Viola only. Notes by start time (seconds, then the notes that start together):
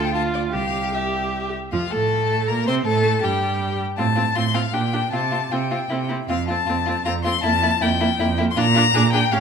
Already playing: F4
0.14 F4
0.53 G4
0.94 G4
1.73 F3
1.91 A3
2.49 A#3
2.68 C4
2.86 A3
3.24 G3
3.99 C4
4.17 C4
4.37 C4
4.54 C4
4.73 D4
4.93 D4
5.12 C4
5.32 C4
5.52 C4
5.71 C4
5.91 C4
6.10 C4
6.30 C4
6.50 C4
6.69 C4
6.88 C4
7.07 C4
7.26 C4
7.45 A#3
7.63 A#3
7.83 A#3
8.01 A#3
8.20 A#3
8.39 A#3
8.57 D4
8.76 D4
8.95 D4
9.14 D4
9.32 C#4